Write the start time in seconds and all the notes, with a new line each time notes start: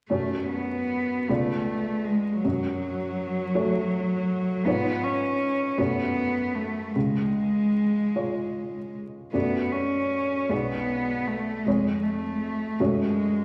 0.09 F#2 A3 C#4 F#4 C#5
0.48 B3
1.28 C#2 A3 B3 F4 D5
2.04 G#3
2.43 F#2 F#3
3.55 A3 F#4 C#5
4.66 G#2 B3 F4 C#5
5.03 C#4
5.78 F#2 A3 B3 F#4 C#5
6.55 A3
6.94 C#2 G#3
8.15 G#3 F4 C#5
9.33 F#2 A3 B3 F#4 D5
9.72 C#4
10.49 B1 G#3 B3 G#4 D5
11.28 A3
11.65 F2 G#3 G#4 C#5
12.03 A3
12.80 F#2 G#3 A3 F#4 C#5